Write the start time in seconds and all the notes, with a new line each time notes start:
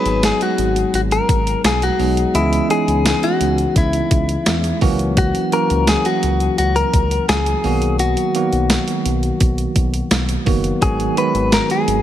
Already playing: F#3 G#3 B3 D#4 G#4 B4
0.05 G#1, closed hi-hat
0.23 G#4, snare, closed hi-hat, tambourine
0.41 F#4, closed hi-hat
0.58 G#1, closed hi-hat
0.76 closed hi-hat
0.94 G#1 F#4, closed hi-hat
1.11 A#4, closed hi-hat
1.29 G#1, kick, closed hi-hat
1.47 closed hi-hat
1.64 B1 G#4, snare, closed hi-hat, tambourine
1.82 F#4, closed hi-hat
1.99 B1 F#3 G#3 B3 D#4 G#4, open hi-hat
2.17 closed hi-hat
2.34 C#2 E3 G#3 B3 C#4 E4 G#4, closed hi-hat
2.53 closed hi-hat
2.69 E3 G#3 B3 C#4 D#4 G#4, closed hi-hat
2.88 C#2, closed hi-hat
3.05 snare, closed hi-hat, tambourine
3.23 F#4, closed hi-hat
3.41 C#2, closed hi-hat
3.58 closed hi-hat
3.76 C#2 E4, kick, closed hi-hat
3.93 closed hi-hat
4.11 C#2, kick, closed hi-hat
4.29 closed hi-hat
4.46 E2, snare, closed hi-hat, tambourine
4.64 closed hi-hat
4.81 C#2 E3 F#3 A#3 C#4 F#4, kick, open hi-hat
4.99 closed hi-hat
5.17 F#4, kick, closed hi-hat
5.35 closed hi-hat
5.52 E3 F#3 A#3 C#4 F#4 A#4, closed hi-hat
5.70 C#2, closed hi-hat
5.87 G#4, snare, closed hi-hat, tambourine
6.05 F#4, closed hi-hat
6.23 C#2, closed hi-hat
6.40 closed hi-hat
6.58 C#2 F#4, closed hi-hat
6.76 A#4, closed hi-hat
6.93 C#2, kick, closed hi-hat
7.11 closed hi-hat
7.29 C#2 G#4, snare, closed hi-hat, tambourine
7.46 closed hi-hat
7.64 B1 D#3 F#3 A#3 B3 F#4, open hi-hat
7.82 closed hi-hat
7.99 F#4, closed hi-hat
8.17 closed hi-hat
8.35 D#3 F#3 A#3 B3 F#4, closed hi-hat
8.53 B1, closed hi-hat
8.70 snare, closed hi-hat, tambourine
8.88 closed hi-hat
9.05 B1, closed hi-hat
9.23 closed hi-hat
9.40 B1, kick, closed hi-hat
9.58 closed hi-hat
9.76 B1, kick, closed hi-hat
9.94 closed hi-hat
10.11 B1, snare, closed hi-hat, tambourine
10.29 closed hi-hat
10.46 F#1 D#3 F#3 A#3 B3 F#4, kick, open hi-hat
10.64 closed hi-hat
10.81 G#1 D#3 F#3 G#3 B3 F#4 G#4, kick, closed hi-hat
11.00 closed hi-hat
11.16 D#3 F#3 G#3 B3 F#4 B4, closed hi-hat
11.34 G#1, closed hi-hat
11.52 A#4, snare, closed hi-hat, tambourine
11.70 G#4, closed hi-hat
11.88 G#1, closed hi-hat